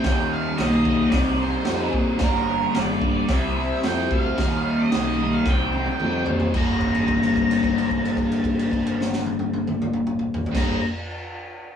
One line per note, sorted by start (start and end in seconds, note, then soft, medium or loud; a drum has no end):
0.03 0.47 D#2 loud
0.03 0.56 D#3 medium
0.03 0.59 G3 medium
0.03 0.60 A#3 medium
0.03 0.33 G5 medium
0.03 kick loud
0.03 snare loud
0.03 open hi-hat medium
0.08 0.61 D#4 medium
0.33 0.60 F5 loud
0.58 1.01 B1 loud
0.58 1.10 D#3 medium
0.58 0.87 G3 medium
0.58 0.85 A#3 medium
0.58 1.09 D#5 loud
0.58 snare loud
0.58 open hi-hat medium
0.62 0.82 D#4 loud
0.84 1.11 G3 medium
0.84 1.11 A#3 medium
0.84 1.10 D#4 medium
0.84 kick medium
1.10 1.54 C2 loud
1.10 1.64 C3 medium
1.10 1.42 G3 medium
1.10 1.41 C4 loud
1.10 1.38 D#4 loud
1.10 1.40 D5 medium
1.10 kick loud
1.10 snare loud
1.10 open hi-hat medium
1.39 1.67 G3 medium
1.39 1.67 C4 medium
1.39 1.68 D#4 medium
1.39 1.91 C5 medium
1.65 1.88 F2 medium
1.65 2.18 C3 medium
1.65 2.20 G3 medium
1.65 2.20 C4 medium
1.65 snare loud
1.65 open hi-hat medium
1.69 2.21 D#4 medium
1.93 2.21 A#2 medium
1.93 kick medium
2.18 2.62 G1 medium
2.18 2.71 G2 medium
2.18 2.73 D3 medium
2.18 2.74 G3 medium
2.18 2.75 A#3 medium
2.18 2.76 D4 loud
2.18 kick loud
2.18 snare loud
2.18 open hi-hat medium
2.23 2.78 A#4 medium
2.72 3.26 G2 medium
2.72 3.27 D3 medium
2.72 3.05 G3 medium
2.72 snare loud
2.72 open hi-hat medium
2.76 3.17 G1 medium
2.76 3.03 A#3 medium
2.76 3.01 D4 medium
2.76 3.33 D5 loud
3.02 3.29 A#3 medium
3.02 3.28 D4 medium
3.02 kick medium
3.06 3.29 G3 medium
3.27 3.71 C2 medium
3.27 3.80 C3 medium
3.27 3.59 G3 medium
3.27 kick loud
3.27 snare loud
3.27 open hi-hat medium
3.31 3.56 C4 medium
3.31 3.54 E4 medium
3.31 3.76 E5 medium
3.55 3.84 C4 medium
3.55 3.84 E4 medium
3.59 3.83 G3 medium
3.77 3.84 E5 medium
3.81 4.35 C3 medium
3.81 4.37 G3 medium
3.81 4.37 C4 medium
3.81 4.12 G5 loud
3.81 snare loud
3.81 open hi-hat soft
3.86 4.06 F2 medium
3.86 4.37 E4 medium
4.11 4.32 D2 medium
4.11 4.81 F5 loud
4.11 kick medium
4.35 4.79 D#2 medium
4.35 4.89 D#3 medium
4.35 4.91 G3 medium
4.35 4.92 A#3 medium
4.35 kick loud
4.35 snare loud
4.35 open hi-hat medium
4.39 4.93 D#4 medium
4.78 5.34 D#5 loud
4.90 5.44 D#3 medium
4.90 5.22 G3 medium
4.90 5.21 A#3 medium
4.90 5.19 D#4 loud
4.90 snare loud
4.90 open hi-hat medium
4.94 5.35 B1 medium
5.20 5.45 G3 medium
5.20 5.46 A#3 medium
5.20 5.45 D#4 medium
5.33 5.49 F5 medium
5.45 5.88 C2 medium
5.45 5.99 C3 loud
5.45 5.77 G3 medium
5.45 5.75 C4 loud
5.45 5.73 D#4 loud
5.45 6.29 G5 medium
5.45 kick loud
5.45 snare medium
5.73 6.02 C4 medium
5.73 6.03 D#4 medium
5.73 high tom medium
5.78 6.00 G3 medium
5.86 high tom medium
6.00 6.22 F2 medium
6.00 6.53 C3 medium
6.00 6.53 G3 medium
6.00 6.54 C4 medium
6.00 mid tom medium
6.05 6.55 D#4 medium
6.26 6.48 A#2 medium
6.26 floor tom medium
6.40 floor tom medium
6.53 10.45 G1 medium
6.53 10.48 G2 medium
6.53 10.49 D3 medium
6.53 10.49 G3 medium
6.53 10.50 A#3 medium
6.53 kick loud
6.53 crash medium
6.57 10.50 D4 medium
6.57 10.46 A#5 medium
6.81 kick medium
6.81 crash soft
6.95 crash soft
7.08 kick medium
7.08 crash soft
7.23 crash soft
7.36 kick medium
7.36 crash soft
7.51 crash soft
7.63 kick medium
7.63 crash medium
7.78 crash soft
7.90 kick medium
7.90 crash soft
8.05 crash soft
8.17 kick medium
8.17 crash soft
8.32 crash soft
8.44 kick medium
8.44 crash soft
8.59 crash soft
8.72 kick medium
8.72 crash soft
8.86 crash medium
9.01 snare medium
9.13 snare medium
9.26 high tom medium
9.39 high tom medium
9.53 high tom medium
9.67 mid tom medium
9.82 mid tom loud
9.93 mid tom medium
10.07 mid tom medium
10.19 mid tom medium
10.34 floor tom loud
10.46 floor tom medium
10.52 10.78 G2 medium
10.52 10.79 D3 loud
10.52 10.79 G3 loud
10.52 10.80 A#3 loud
10.52 kick medium
10.52 snare medium
10.52 crash loud
10.56 10.78 G1 medium
10.56 10.80 D4 loud
10.56 10.79 A#5 medium